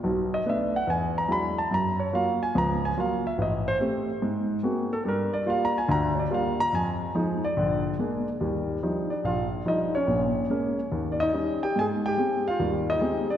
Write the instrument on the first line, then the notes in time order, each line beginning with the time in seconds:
grand piano
0.03 B1 B2
0.34 D#5
0.46 A3 B3 D4 E5
0.76 F#5
0.87 E2 G#5
1.18 A#5
1.28 F#3 G#3 D4 E4
1.32 B5
1.58 A5
1.71 F#2 A#5
2.00 C#5
2.13 F#3 A#3 F4 F5
2.43 G#5
2.55 C#2 F3 A#5
2.85 G#5
2.97 F#3 A#3 F4 F5
3.27 E5
3.38 A1 D#5
3.68 C5
3.80 A3 C4 G4
4.22 G#2
4.63 G#3 A#3 C4 F#4
4.93 A4
5.04 G2 A4
5.08 A#4
5.33 D5
5.46 G3 A#3 F4 F5
5.65 A#5
5.78 G#5
5.88 D2 D3 A#5
6.15 C#5
6.19 D5
6.30 G3 A#3 F4 F5
6.60 A#5
6.73 F2 G#5
7.15 F3 G#3 D#4
7.45 D5
7.57 A#1 D3
7.99 G#3 A#3 D4
8.41 D#2 G3
8.83 F3 G3 D4 D#4
9.10 D4 D5
9.24 A#1 F4 F5
9.65 F3 G3 D4 D#4 D#5
9.70 D#4
9.95 C#4 C#5
10.07 A#1 A#2
10.50 G#3 A#3 C#4
10.92 D#2
11.12 D5
11.20 D#4 D#5
11.33 G3 C#4 D#4
11.63 G4 G5
11.76 G#2 G#5
11.81 G#4
12.06 G4 G5
12.17 G#3 C4 G4
12.48 F4 F5
12.60 D#2 G3
12.90 D#4 D#5
13.01 G#3 C4 G4
13.30 D4 D5